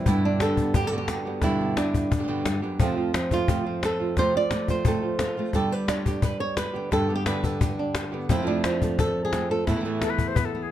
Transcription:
0.06 G2 B2 D3 G3 B3 E4 G4, cajon bass
0.24 D4, cajon slap
0.40 D3 G3 B3 G4 A4, cajon slap
0.57 B3, cajon bass
0.74 G4, muted nylon-string guitar stroke, cajon bass
0.82 B2 D3 G3 B3 G4
0.87 B2 D3 G3 B3 G4 A4
0.91 G2 B2 D3 G3 B3 D4 G4
0.98 G4
1.08 D3 G3 B3 F#4 G4, cajon slap
1.25 D3 G3 B3 G4
1.42 G2 B2 D3 G3 B3 E4 G4, cajon bass, cajon slap
1.60 B3, cajon slap
1.76 D3 G3 B3 D4 G4, cajon slap
1.94 cajon bass
2.11 muted nylon-string guitar stroke, cajon bass
2.18 B2 D3 G3 B3 G4
2.23 B2 D3 G3 B3 G4
2.27 G2 B2 D3 G3 B3 G4
2.45 G2 D3 G3 B3 G4, cajon slap
2.62 F#2 D3 G3 B3 G4, cajon slap
2.79 F2 C3 F3 A3 C4 F4, cajon bass
2.83 F4
2.96 F3 A3 C4 F4
3.13 F3, muted nylon-string guitar stroke, cajon slap
3.31 F3 A3 C4 F4, cajon bass
3.48 F2 C3 F3 A3 C4 F4, cajon bass
3.65 F3 A3 C4 F4
3.83 A4, muted nylon-string guitar stroke, cajon slap
4.00 F3 A3 C4 F4
4.17 F2 C3 F3 A3 C4 F4 C5, cajon bass, cajon slap
4.34 F3 A3 C4 F4 D5
4.51 A3, muted nylon-string guitar stroke, cajon slap
4.68 F3 A3 C4 F4 C5, cajon bass
4.85 F2 C3 F3 A3 C4 F4 A4, cajon bass
5.02 F3 A3 C4 F4
5.19 F4, muted nylon-string guitar stroke, cajon slap
5.37 F3 A3 C4 F4, cajon slap
5.53 G2 B2 D3 G3 B3 G4 A4, cajon bass, cajon slap
5.71 D3 G3 B3 G4 B4
5.88 D3 G3 B3 D4 G4 C#5, cajon slap
6.05 D3 G3 B3 G4, cajon bass
6.22 B4, muted nylon-string guitar stroke, cajon bass
6.40 C#5
6.57 B4, cajon slap
6.74 D3 G3 B3 G4, cajon slap
6.91 G2 B2 D3 G3 B3 G4 A4, cajon bass, cajon slap
7.08 D3 G3 B3 G4
7.15 G4
7.26 D3 G3 B3 G4 B4, cajon slap
7.43 D3 G3 B3 G4 A4, cajon bass
7.60 G4, muted nylon-string guitar stroke, cajon bass
7.79 D4
7.95 cajon slap
8.12 D3 G3 B3 G4
8.29 F2 C3 F3 A3 C4 E4 F4, cajon bass
8.37 C3 F3 A3 C4 F4
8.42 C3 F3 A3 C4 F4
8.46 F2 C3 F3 A3 C4 D4 F4, cajon slap
8.64 F3 A3 C4 F4, cajon slap
8.82 A3, cajon bass
8.99 A4, muted nylon-string guitar stroke, cajon bass
9.25 G#4
9.33 F3 A3 C4 F4, cajon slap
9.50 F3 A3 C4 F4 A4
9.67 E2 A2 E3 A3 B3 E4, cajon bass, cajon slap
9.71 B3
9.76 A2 E3 A3 B3 E4
9.80 A2 E3 A3 B3 E4
9.84 E2 A2 E3 A3 B3 E4, cajon slap
10.01 E3 A3 B3 E4 A4, cajon slap
10.10 B4
10.18 cajon bass
10.28 C5
10.36 B3 B4, muted nylon-string guitar stroke, cajon bass
10.45 A4
10.55 B3
10.63 G#4

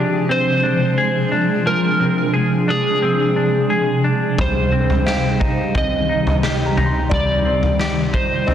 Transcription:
Already playing: C3 F3 G#3 C4 D4 G4 G#4
0.29 C4 C5
0.63 D4
0.98 G#4
1.32 D4
1.66 F3 A#4
2.00 C4
2.34 G#4
2.68 D4 G#4
3.02 C4
3.36 D4
3.70 G#4
4.04 D4
4.38 D#3 G3 D#4 G4 C5, kick, floor tom
4.72 C4
4.90 floor tom
5.06 G4 F5, snare
5.40 D#4, kick
5.75 C4 D#5, kick, floor tom
6.09 D#4
6.27 floor tom
6.43 G4 G5, snare
6.66 A#5
6.77 D#4, floor tom
6.86 C6
7.09 G3 F4 D5, kick, floor tom
7.45 C4
7.63 floor tom
7.79 G4, snare
8.13 D#4 C5, kick
8.47 C4 D#5, floor tom

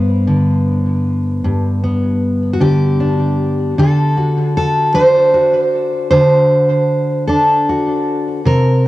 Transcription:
Already playing: G2 B3 B4
0.27 D3
1.44 G2
1.84 B3
2.53 F#4
2.60 D3 G4
3.00 D4
3.78 D3 A4
4.17 F#4
4.57 A4
4.94 D4 C5
5.34 F#4
6.11 D3 C5
7.27 D4 A4
7.69 F#4
8.45 C3 A#4

